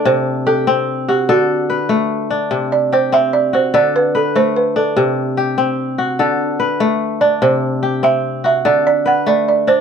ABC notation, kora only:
X:1
M:12/8
L:1/8
Q:3/8=98
K:Dmix
V:1 name="Kora"
D z G3 F A2 B3 D- | D z G3 F A2 B3 D- | D z G3 F A2 B3 D- | D z G3 F A2 B3 D |]
V:2 name="Kora" clef=bass
C,2 z C2 z D,2 z A,2 z | C,2 z C2 z D,2 z A,2 z | C,2 z C2 z D,2 z A,2 z | C,2 z C2 z D,2 z A,2 z |]